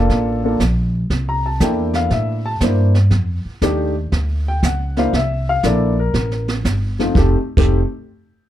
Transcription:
Already playing: A#3 D4 F4 A4
0.09 A1, brush sweep, kick, snare
0.44 A#3 D4 F4 A4
0.60 A#1, kick, snare, hi-hat pedal
1.10 C2, brush sweep, kick, snare
1.29 A#5
1.46 A5
1.60 E2 A#3 D4 E4 A4 G5, kick, snare, hi-hat pedal
1.94 F5, snare
2.10 A2 E5, brush sweep, kick, snare
2.46 A5
2.61 G2 A#3 D4 E4 C5, kick, snare, hi-hat pedal
2.95 snare
3.11 F2, brush sweep, kick, snare
3.45 muted upright bass stroke
3.62 D#2 A3 D4 D#4 G4, kick, snare, hi-hat pedal
4.12 D2, brush sweep, kick, snare
4.48 G5
4.63 C#2 F#5, kick, snare, hi-hat pedal
4.97 A#3 D4 E4 C5 F5, snare
5.13 C2 E5, brush sweep, kick, snare
5.49 F5
5.63 A#1 A#3 D4 E4 A4 D5, kick, snare, hi-hat pedal
6.00 A#4
6.14 A1, brush sweep, kick, snare
6.31 snare
6.48 snare
6.65 G1, kick, snare, hi-hat pedal
6.99 F2 A3 C4 D#4 F4, snare
7.15 F1 A3 C4 D#4 G4 A4, kick, snare
7.57 F1 A3 C4 D#4 G4 A4, kick, snare, crash

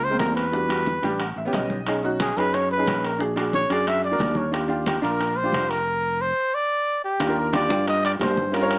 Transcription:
Already playing: C#2
0.03 C5, high conga
0.10 G#3 A#3 C4
0.19 E2 A#4, high bongo, low bongo, high conga, high timbale, low timbale
0.36 B4, high conga, high timbale
0.52 G3 D4 F#4, high bongo, high conga
0.68 G3 D4 F#4, high bongo, high conga, high timbale
0.86 high bongo, high conga
1.02 A1 G3 D4 G4 G5, high bongo, high timbale
1.20 F#5, high bongo, high conga, high timbale
1.36 A1 E5, high conga
1.45 B3 C#4 G4
1.52 B1 D#5, high bongo, low bongo, high conga, high timbale
1.70 high bongo, high conga
1.86 C#4 D#4 G#4, high bongo, high conga, high timbale
2.03 C#4 D#4 F#4, high conga
2.20 G#4, high bongo, high conga, high timbale
2.36 F#2 C#4 D#4 G#4 B4, high conga, high timbale
2.54 C#5, high bongo, high conga, high timbale
2.71 B4, high conga
2.77 C#4 D#4 G#4
2.86 A#1, high bongo, low bongo, high conga, high timbale
3.04 A#4, high conga, high timbale
3.19 D4 F#4 G#4, high bongo, high conga
3.36 D4 F#4 G#4, high bongo, high conga, high timbale
3.53 C#5, high bongo, high conga
3.70 F#2 D4 F#4 G#4 D5, high bongo, high timbale
3.87 E5, high bongo, high conga, high timbale
4.03 D5, high conga
4.11 D4 F#4 A#4
4.19 D#2, high bongo, low bongo, high conga, high timbale, low timbale
4.35 C#5, high bongo, high conga
4.51 D4 F4 G4, high bongo, high conga, high timbale
4.68 D4 F4 G4, high conga
4.86 G4, high bongo, high conga, high timbale
5.02 A#1 D4 F4 A#4, high conga, high timbale
5.20 high bongo, high conga, high timbale
5.36 C5, high conga
5.43 D4 F4 G4
5.52 F1, high bongo, low bongo, high conga, high timbale
5.69 A#4, high conga, high timbale
6.21 C5
6.54 D5
7.05 G4
7.20 D#2 D4 F4 G4, high bongo, high conga, high timbale
7.28 D4 F4 A#4
7.37 A#4, high conga
7.53 D4 F4 G4 D5, high bongo, high conga, high timbale, low timbale
7.69 G2 D4 F4 G4, high conga
7.87 D#5, high bongo, high conga, high timbale
8.04 D5, high bongo, high conga, high timbale
8.19 G2 C5, high bongo, low bongo, high conga, high timbale, low timbale
8.37 high bongo, high conga
8.52 C#4 F4 A#4, high bongo, high conga, high timbale
8.61 C#4 F4 C#5
8.70 high conga, high timbale

